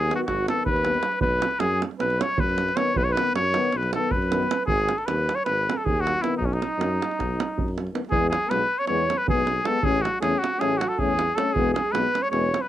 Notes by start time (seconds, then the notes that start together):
Already playing: G#4
0.08 D#3 B3, davul high
0.15 F#4
0.26 G#1 F#4, davul high, davul low
0.48 D#3 B3 A4, davul high
0.66 D#2 B4, davul low
0.76 davul high
0.85 D#3 B3, davul high
0.94 davul high
1.03 davul high
1.12 davul high
1.21 B1 B4, davul low
1.42 davul high
1.51 davul high
1.60 F#2 G#4, davul high
1.82 davul high
1.91 davul high
1.99 B1 B4, davul high
2.10 davul high
2.19 C#5, davul high
2.38 F#2 B4, davul low
2.49 davul high
2.58 davul high
2.69 davul high
2.75 D#3 B3 C#5, davul high
2.94 B1 B4, davul low
3.03 C#5
3.09 D#3 B4
3.16 B3, davul high
3.27 davul high
3.34 F#2 C#5, davul high
3.53 D#3 B3, davul high
3.64 davul high
3.72 B1 B4, davul high
3.77 B4
3.83 davul high
3.93 D#3 B3 A4, davul high
4.11 F#2 B4, davul low
4.22 davul high
4.30 D#3 B3, davul high
4.43 davul high
4.51 davul high
4.66 G#1 G#4, davul low
4.89 davul high
4.97 A4, davul high
5.06 D#2 B4, davul high
5.29 davul high
5.35 C#5, davul high
5.45 G#1 B4, davul high
5.58 davul high
5.70 A4, davul high
5.77 A4
5.84 D#2 G#4, davul low
6.00 F#4
6.07 davul high
6.14 davul high
6.21 D#3 B3 E4, davul high
6.37 B1 D#4
6.41 C#4, davul low
6.46 C#4
6.53 D#4, davul high
6.62 davul high
6.78 F#2, davul high
7.02 davul high
7.11 davul high
7.18 B1, davul high, davul low
7.40 davul high
7.57 F#2, davul low
7.68 davul high
7.78 davul high
7.87 davul high
7.93 D#3 B3, davul high
8.05 davul high
8.10 E2 G#3 B3 G#4, davul low
8.30 G#4, davul high
8.47 B1 G#3 B3 B4, davul high
8.79 C#5, davul high
8.87 E2 G#3 B3 C#5, davul high
9.10 davul high
9.18 B4
9.27 B1 G#3 B3 G#4, davul low
9.47 davul high
9.64 G#3 B3 A4, davul high
9.81 A1 A3 C#4 G#4, davul low
10.02 F#4, davul high
10.20 E2 A3 C#4 G#4, davul high
10.39 F#4
10.44 davul high
10.53 davul high
10.58 A1 A3 C#4 G#4, davul high
10.78 F#4, davul high
10.88 A4
10.96 E2 A3 C#4 G#4 A4, davul low
11.19 davul high
11.35 A3 C#4 A4, davul high
11.53 E1 G#3 B3 G#4, davul low
11.74 G#4, davul high
11.91 B1 G#3 B3 B4, davul high
12.15 davul high
12.23 C#5, davul high
12.30 E1 G#3 B3 C#5, davul high
12.54 davul high
12.61 B4